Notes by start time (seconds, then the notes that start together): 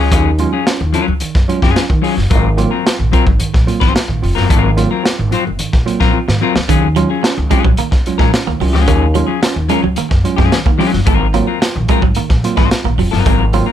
Already playing: C#2 F4 G#4
0.00 F#3 C#4
0.11 D#2 D#3 F#3 C#4 F4 G#4, kick, closed hi-hat
0.38 F#3 G#3 C#4 F4, muted clean electric guitar stroke, closed hi-hat
0.53 F#3 C#4 F4 G#4
0.66 C#4 F4, muted clean electric guitar stroke, snare, closed hi-hat
0.80 D#2 D#3, muted clean electric guitar stroke
0.93 F#3 C#4 F4 A#4, closed hi-hat
1.06 C#2, muted clean electric guitar stroke
1.20 D#3, muted clean electric guitar stroke, muted upright bass stroke, closed hi-hat
1.35 F#2, muted clean electric guitar stroke, kick, snare
1.48 F#3 G#3 C#4 F4, closed hi-hat
1.62 F#2 F#3 C#4 F4 G#4, kick, snare
1.76 C#4 F4, snare, closed hi-hat
1.89 D#3, muted clean electric guitar stroke, kick
2.02 F#3 C#4 F4 G#4, open hi-hat
2.16 F#1, muted clean electric guitar stroke, snare
2.30 G#1 G#2 D#3 F#3 C4 F4 A#4, kick, closed hi-hat
2.57 F#3 A#3 C4 F4, muted clean electric guitar stroke, closed hi-hat
2.71 F#3 C4 F4 A#4
2.86 C4 F4, muted clean electric guitar stroke, snare, closed hi-hat
2.98 A#1 G#2 D#3, muted clean electric guitar stroke
3.12 F#3 C4 F4 A#4, kick, closed hi-hat
3.26 G#1, muted clean electric guitar stroke, kick
3.39 G#2 D#3, muted clean electric guitar stroke, muted upright bass stroke, closed hi-hat
3.54 A#1, muted clean electric guitar stroke, kick, snare
3.67 F#3 A#3 C4 F4, closed hi-hat
3.80 G#1 F#3 C4 F4 C5, kick, snare
3.94 C4 F4, muted clean electric guitar stroke, snare, closed hi-hat
4.08 A#1 G#2 D#3, muted clean electric guitar stroke
4.22 F1 C4 F4, open hi-hat
4.35 F#1 F#3 C4 F4 A#4, snare
4.49 G#1 G#2 D#3 F#3 C4 F4 A#4, kick, closed hi-hat
4.77 F#3 A#3 C4 F4, muted clean electric guitar stroke, closed hi-hat
4.91 F#3 C4 F4 A#4
5.03 C4 F4, muted clean electric guitar stroke, snare, closed hi-hat
5.18 G#1 G#2 D#3, muted clean electric guitar stroke
5.31 F#3 C4 F4 C5, closed hi-hat
5.45 F#1, muted clean electric guitar stroke
5.58 G#2 D#3, muted clean electric guitar stroke, muted upright bass stroke, closed hi-hat
5.73 A#1, muted clean electric guitar stroke, kick, snare
5.86 F#3 A#3 C4 F4, closed hi-hat
6.00 A#1 F#3 C4 F4 A#4, kick, snare
6.13 C4 F4
6.27 G#2 D#3, muted clean electric guitar stroke, snare
6.41 F#3 C4 F4 A#4
6.55 C#2, muted clean electric guitar stroke, snare
6.68 D#2 D#3 F#3 C#4 F4 G#4, kick, closed hi-hat
6.82 muted clean electric guitar stroke
6.96 F#3 G#3 C#4 F4, muted clean electric guitar stroke, closed hi-hat
7.10 F#3 C#4 F4 G#4
7.23 C#4 F4, muted clean electric guitar stroke, snare, closed hi-hat
7.37 C#2 D#3, muted clean electric guitar stroke
7.50 F#3 G#3 C#4 F4 G#4, kick, closed hi-hat
7.64 A#1 F#3, muted clean electric guitar stroke, kick
7.77 D#3 A#3, muted upright bass stroke, muted clean electric guitar stroke, closed hi-hat
7.91 C#2, muted clean electric guitar stroke, kick, snare
8.06 F#3 G#3 C#4 F4, closed hi-hat
8.18 A#1 F#3 G#3 C#4 F4 A#4, kick, snare
8.32 C#4 F4, muted clean electric guitar stroke, snare, closed hi-hat
8.47 C#2 D#3 A#3, muted clean electric guitar stroke
8.60 C2 F#3 C#4 F4, open hi-hat
8.73 C#2 F#3 C#4 F4 G#4, snare
8.87 D#2 D#3 F#3 C#4 F4 G#4, kick, closed hi-hat
9.02 muted clean electric guitar stroke
9.13 F#3 G#3 C#4 F4, muted clean electric guitar stroke, closed hi-hat
9.27 F#3 C#4 F4 G#4
9.41 C#4 F4, muted clean electric guitar stroke, snare, closed hi-hat
9.55 D#2 D#3, muted clean electric guitar stroke
9.69 F#3 G#3 C#4 F4 A#4, closed hi-hat
9.82 C#2 F#3, muted clean electric guitar stroke
9.96 D#3 A#3, muted clean electric guitar stroke, muted upright bass stroke, closed hi-hat
10.09 F#2, muted clean electric guitar stroke, kick, snare
10.24 F#3 G#3 C#4 F4, closed hi-hat
10.36 F#2 F#3 G#3 C#4 F4 G#4, kick, snare
10.52 D#3, muted clean electric guitar stroke, snare, closed hi-hat
10.64 D#3 A#3, muted clean electric guitar stroke, kick
10.78 F#3 G#3 C#4 F4 G#4, open hi-hat
10.92 F#1 C#4 F4, muted clean electric guitar stroke, snare
11.05 G#1 G#2 D#3 F#3 G#3 C4 F4 A#4, kick, closed hi-hat
11.21 muted clean electric guitar stroke
11.33 F#3 A#3 C4 F4, muted clean electric guitar stroke, closed hi-hat
11.47 F#3 C4 F4 A#4
11.60 C4 F4, muted clean electric guitar stroke, snare, closed hi-hat
11.75 A#1 G#2 D#3, muted clean electric guitar stroke
11.88 F#3 G#3 C4 F4 A#4, kick, closed hi-hat
12.02 G#1 F#3, muted clean electric guitar stroke, kick
12.15 G#2 D#3 A#3, muted upright bass stroke, muted clean electric guitar stroke, closed hi-hat
12.30 A#1, muted clean electric guitar stroke, kick, snare
12.44 F#3 A#3 C4 F4, closed hi-hat
12.57 G#1 F#3 G#3 C4 F4 C5, kick, snare
12.70 C4 F4, muted clean electric guitar stroke, snare, closed hi-hat
12.84 A#1 G#2 D#3 A#3, muted clean electric guitar stroke
12.98 F1 F#3 C4 F4, open hi-hat
13.11 F#1 F#3 C4 F4 A#4, snare
13.25 G#1 G#2 D#3 F#3 G#3 C4 F4 A#4, kick, closed hi-hat
13.41 muted clean electric guitar stroke
13.53 F#3 A#3 C4 F4, muted clean electric guitar stroke, closed hi-hat
13.66 F#3 C4 F4 A#4